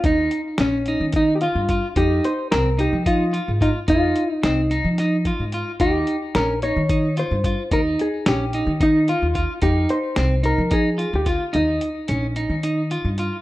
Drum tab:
HH |xxxxxxx|xxxxxxx|xxxxxxx|xxxxxxx|
SD |--o----|--o----|--o-o--|--o----|
BD |o---o-o|o---o-o|o----o-|o---o-o|

HH |xxxxxxx|xxxxxxx|xxxxxxx|
SD |--o----|--o----|-------|
BD |o---o-o|o---o-o|-------|